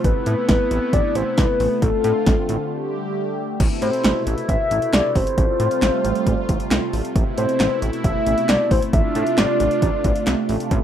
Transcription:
Already playing: analog synth pad C3 A3
0.04 analog synth bass A1, analog synth pad B3 E4, soft synth lead B4, kick, closed hi-hat
0.26 analog synth bass A2, closed hi-hat
0.49 analog synth bass A1, soft synth lead B4, kick, snare, closed hi-hat
0.71 analog synth bass A1, closed hi-hat
0.93 analog synth bass A1, soft synth lead D5, kick, closed hi-hat
1.15 analog synth bass A1, soft synth lead C5, closed hi-hat
1.38 analog synth bass C2, soft synth lead B4, kick, snare, closed hi-hat
1.60 analog synth bass A1, open hi-hat
1.82 analog synth bass A1, analog synth pad D3 C4 F4, soft synth lead A4, kick, closed hi-hat
2.04 analog synth bass A2, closed hi-hat
2.26 analog synth bass A1, kick, snare, closed hi-hat
2.49 analog synth bass A1, closed hi-hat
2.71 analog synth pad G3 G4
3.60 analog synth bass A1, analog synth pad B2 C3 A3 E4, kick, closed hi-hat, crash
3.82 analog synth bass A2, soft synth lead C5, closed hi-hat
3.93 closed hi-hat
4.04 analog synth bass A1, snare, clap, closed hi-hat
4.27 analog synth bass A1, closed hi-hat
4.38 closed hi-hat
4.49 analog synth bass A1, soft synth lead E5, kick, closed hi-hat
4.71 analog synth bass A1, closed hi-hat
4.82 closed hi-hat
4.93 analog synth bass C2, soft synth lead D5, snare, clap, closed hi-hat
5.15 analog synth bass A1, soft synth lead C5, kick, open hi-hat
5.27 closed hi-hat
5.38 analog synth bass A1, analog synth pad G3 F4, kick, closed hi-hat
5.60 analog synth bass A2, closed hi-hat
5.71 closed hi-hat
5.82 analog synth bass A1, snare, clap, closed hi-hat
6.05 analog synth bass A1, closed hi-hat
6.15 closed hi-hat
6.27 analog synth bass A1, kick, closed hi-hat
6.49 analog synth bass A1, kick, closed hi-hat
6.60 closed hi-hat
6.71 analog synth bass C2, snare, clap, closed hi-hat
6.93 analog synth bass A1, open hi-hat
7.05 closed hi-hat
7.16 analog synth bass A1, analog synth pad B2 A3 E4, kick, closed hi-hat
7.38 analog synth bass A2, soft synth lead C5, closed hi-hat
7.49 closed hi-hat
7.60 analog synth bass A1, snare, clap, closed hi-hat
7.82 analog synth bass A1, closed hi-hat
7.93 closed hi-hat
8.04 analog synth bass A1, soft synth lead E5, kick, closed hi-hat
8.26 analog synth bass A1, closed hi-hat
8.38 closed hi-hat
8.49 analog synth bass C2, soft synth lead D5, snare, clap, closed hi-hat
8.71 analog synth bass A1, soft synth lead C5, kick, open hi-hat
8.82 closed hi-hat
8.93 analog synth bass A1, analog synth pad C3 D4 F4, soft synth lead E5, kick, closed hi-hat
9.15 analog synth bass A2, closed hi-hat
9.27 closed hi-hat
9.38 analog synth bass A1, soft synth lead D5, snare, clap, closed hi-hat
9.60 analog synth bass A1, closed hi-hat
9.71 closed hi-hat
9.82 analog synth bass A1, kick, closed hi-hat
10.04 analog synth bass A1, kick, closed hi-hat
10.16 closed hi-hat
10.27 analog synth bass C2, snare, clap, closed hi-hat
10.49 analog synth bass A1, open hi-hat
10.60 closed hi-hat
10.71 analog synth bass A1, analog synth pad B2 E4, kick, closed hi-hat

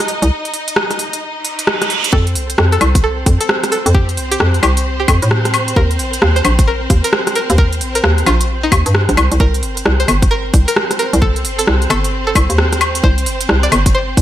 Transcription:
Already playing: violin section D#4 D#5
0.08 open hi-hat
0.22 fm bass C2, closed hi-hat
0.45 closed hi-hat
0.54 open hi-hat
0.68 closed hi-hat
0.76 cross-stick
0.91 cross-stick, closed hi-hat
0.99 open hi-hat
1.13 closed hi-hat
1.22 reverse cymbal
1.45 open hi-hat
1.59 closed hi-hat
1.67 cross-stick
1.82 cross-stick, closed hi-hat
1.90 open hi-hat
2.04 closed hi-hat
2.13 fm bass F2, violin section C4 C5, synth pluck A4, kick
2.27 closed hi-hat
2.35 fm bass C2, open hi-hat
2.50 closed hi-hat
2.58 fm bass F2, cross-stick
2.72 synth pluck A4, closed hi-hat
2.81 fm bass C2, open hi-hat, high woodblock
2.95 kick, closed hi-hat
3.04 synth pluck A4
3.26 fm bass F2, kick, open hi-hat
3.41 synth pluck A4, closed hi-hat
3.49 cross-stick
3.64 cross-stick, closed hi-hat
3.72 synth pluck A4, open hi-hat
3.86 fm bass F2, closed hi-hat
3.94 synth pluck G4, kick
4.09 closed hi-hat
4.17 fm bass C2, open hi-hat
4.31 synth pluck G4, closed hi-hat
4.40 fm bass F2, cross-stick
4.54 closed hi-hat
4.63 fm bass C2, synth pluck G4, open hi-hat, high woodblock
4.77 closed hi-hat
5.00 synth pluck G4
5.08 fm bass F2, kick, open hi-hat, high woodblock
5.22 fm bass A2, closed hi-hat
5.31 cross-stick
5.45 cross-stick, closed hi-hat
5.54 open hi-hat, high woodblock
5.68 closed hi-hat
5.76 fm bass D#2, synth pluck A#4, kick
5.91 closed hi-hat
5.99 fm bass A#1, open hi-hat
6.13 closed hi-hat
6.22 fm bass D#2, cross-stick
6.36 synth pluck C5, closed hi-hat
6.45 fm bass A#1, open hi-hat, high woodblock
6.59 kick, closed hi-hat
6.67 synth pluck A#4
6.90 fm bass D#2, kick, open hi-hat
7.04 synth pluck A#4, closed hi-hat
7.13 cross-stick
7.27 cross-stick, closed hi-hat
7.35 synth pluck A#4, open hi-hat
7.50 fm bass D#2, closed hi-hat
7.58 synth pluck A#4, kick
7.73 closed hi-hat
7.81 fm bass A#1, open hi-hat
7.95 synth pluck A#4, closed hi-hat
8.04 fm bass D#2, cross-stick
8.18 closed hi-hat
8.26 fm bass A#1, synth pluck F4, open hi-hat, high woodblock
8.41 closed hi-hat
8.63 synth pluck D#4
8.72 fm bass D#2, kick, open hi-hat, high woodblock
8.86 fm bass G2, closed hi-hat
8.95 cross-stick
9.09 fm bass A#1, cross-stick, closed hi-hat
9.17 fm bass C2, open hi-hat, high woodblock
9.32 fm bass C2, closed hi-hat
9.40 fm bass C2, violin section C4 C5, synth pluck A#4, kick
9.54 closed hi-hat
9.63 fm bass G1, open hi-hat
9.77 closed hi-hat
9.85 fm bass C2, cross-stick
10.00 synth pluck C5, closed hi-hat
10.08 fm bass G1, open hi-hat, high woodblock
10.22 kick, closed hi-hat
10.31 synth pluck A#4
10.54 fm bass C2, kick, open hi-hat
10.68 synth pluck A#4, closed hi-hat
10.76 cross-stick
10.91 cross-stick, closed hi-hat
10.99 synth pluck A#4, open hi-hat
11.13 fm bass C2, closed hi-hat
11.22 synth pluck A4, kick
11.36 closed hi-hat
11.45 fm bass G1, open hi-hat
11.59 synth pluck A4, closed hi-hat
11.67 fm bass C2, cross-stick
11.82 closed hi-hat
11.90 fm bass G1, synth pluck A4, open hi-hat, high woodblock
12.04 closed hi-hat
12.27 synth pluck A4
12.35 fm bass C2, kick, open hi-hat, high woodblock
12.50 fm bass D#2, closed hi-hat
12.58 cross-stick
12.73 cross-stick, closed hi-hat
12.81 open hi-hat, high woodblock
12.95 closed hi-hat
13.04 fm bass C2, synth pluck C5, kick
13.18 closed hi-hat
13.26 fm bass G1, open hi-hat
13.41 closed hi-hat
13.49 fm bass C2, cross-stick
13.63 synth pluck D5, closed hi-hat
13.72 fm bass G1, open hi-hat, high woodblock
13.86 kick, closed hi-hat
13.95 synth pluck C5
14.17 fm bass C2, kick, open hi-hat

